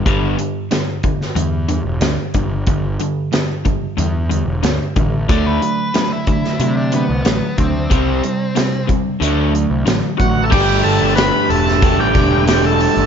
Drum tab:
CC |----------------|----------------|----------------|----------------|
HH |x-x-x-x-x-x-x-x-|x-x-x-x-x-x-x-x-|x-x-x-x-x-x-x-x-|x-x-x-x-x-x-x-x-|
SD |----o--o----o---|----o-------o---|----o--o----o---|----o-------o---|
BD |o-----o-------o-|o-----o-------o-|o-----o-------o-|o-----o-------o-|

CC |x---------------|
HH |--o-o-o-o-o-o-o-|
SD |----o--o----o---|
BD |o-------o-o-----|